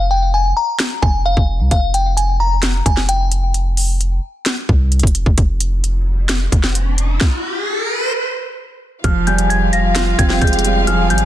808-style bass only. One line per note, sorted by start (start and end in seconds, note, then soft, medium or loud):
0.00 0.53 F1 loud
1.03 1.36 F1 loud
1.37 1.61 F1 loud
1.60 1.71 C2 loud
1.71 2.82 F1 loud
2.86 4.19 F1 loud
4.69 5.02 C2 loud
5.03 5.25 F1 loud
5.26 5.37 F1 loud
5.38 6.48 F1 loud
6.52 7.18 F1 loud
9.04 10.15 F1 loud
10.19 10.41 F1 loud
10.42 11.12 F1 loud
11.10 11.25 G#1 loud